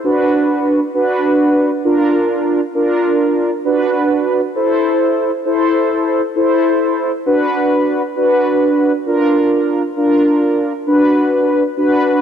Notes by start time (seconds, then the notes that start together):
0.04 D4 F#4 B4
0.94 D4 F#4 B4
1.84 D4 F4 A#4
2.75 D4 F4 A#4
3.65 D4 F#4 B4
4.55 E4 A4 C5
5.45 E4 A4 C5
6.36 E4 A4 C5
7.26 D4 F#4 B4
8.16 D4 F#4 B4
9.06 D4 F4 A#4
9.97 D4 F4 A#4
10.87 D4 F#4 B4
11.77 D4 F#4 B4